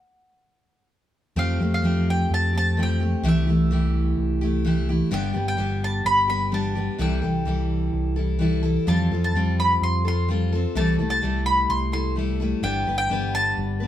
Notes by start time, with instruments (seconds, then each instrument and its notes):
Already playing: mandolin F#5
1.36 picked electric bass F2, steel-string acoustic guitar F3 A3 C4 G4, mandolin F5
1.59 picked electric bass F2, steel-string acoustic guitar A3 C4 G4
1.74 mandolin F5
1.82 picked electric bass F2, steel-string acoustic guitar F3 A3 C4 G4
2.10 mandolin G5
2.30 picked electric bass F2, mandolin A5
2.53 steel-string acoustic guitar A3 C4 G4
2.58 mandolin A5
2.77 steel-string acoustic guitar F3 A3 C4 G4
2.83 mandolin G5
3.00 steel-string acoustic guitar A3 C4 G4
3.23 picked electric bass C2, steel-string acoustic guitar C3 E3 A3 E4 G4
3.29 mandolin E5
3.47 picked electric bass C2, steel-string acoustic guitar A3 E4 G4
3.71 picked electric bass C2, steel-string acoustic guitar E3 A3 E4 G4
4.17 picked electric bass C2
4.41 steel-string acoustic guitar A3 E4 G4
4.65 steel-string acoustic guitar E3 A3 E4 G4
4.89 steel-string acoustic guitar A3 E4 G4
5.11 picked electric bass G1, steel-string acoustic guitar G2 D3 G3 B3 D4 G4, mandolin G5
5.34 picked electric bass G1, steel-string acoustic guitar G3 B3 D4 G4
5.48 mandolin G5
5.57 picked electric bass G1, steel-string acoustic guitar G3 B3 D4 G4
5.84 mandolin A5
6.05 picked electric bass G1, mandolin B5
6.28 steel-string acoustic guitar G3 B3 D4 G4, mandolin B5
6.52 steel-string acoustic guitar G3 B3 D4 G4, mandolin A5
6.75 steel-string acoustic guitar G3 B3 D4 G4
6.98 picked electric bass C2, steel-string acoustic guitar C3 E3 G3 E4 A4, mandolin G5
7.22 picked electric bass C2, steel-string acoustic guitar G3 E4 A4
7.45 picked electric bass C2, steel-string acoustic guitar E3 G3 E4 A4
7.93 picked electric bass C2
8.16 steel-string acoustic guitar G3 E4 A4
8.39 steel-string acoustic guitar E3 G3 E4 A4
8.63 steel-string acoustic guitar G3 E4 A4
8.87 picked electric bass F2, steel-string acoustic guitar F3 G3 C4 F4 A4, mandolin A5
9.11 picked electric bass F2, steel-string acoustic guitar C4 F4 A4
9.24 mandolin A5
9.34 picked electric bass F2, steel-string acoustic guitar G3 C4 F4
9.39 steel-string acoustic guitar A4
9.60 mandolin B5
9.81 picked electric bass F2, mandolin C6
10.05 steel-string acoustic guitar C4 F4 A4, mandolin C6
10.28 steel-string acoustic guitar G3 C4 F4 A4
10.52 steel-string acoustic guitar C4 F4 A4
10.75 picked electric bass C2, steel-string acoustic guitar C3 E3 G3 A3 E4 A4, mandolin A5
10.99 picked electric bass C2, steel-string acoustic guitar G3 A3 E4 A4
11.10 mandolin A5
11.22 picked electric bass C2, steel-string acoustic guitar G3 A3 E4 A4
11.46 mandolin B5
11.69 picked electric bass C2, mandolin C6
11.92 steel-string acoustic guitar G3 A3 E4 A4, mandolin C6
12.16 steel-string acoustic guitar G3 A3 E4 A4
12.40 steel-string acoustic guitar G3 A3 E4 A4
12.62 picked electric bass G1, steel-string acoustic guitar G3 B3 D4 B4, mandolin G5
12.87 picked electric bass G1, steel-string acoustic guitar B3 D4 B4
12.98 mandolin G5
13.10 picked electric bass G1, steel-string acoustic guitar G3 B3 D4 B4
13.35 mandolin A5
13.58 picked electric bass G1
13.80 steel-string acoustic guitar B3 D4 B4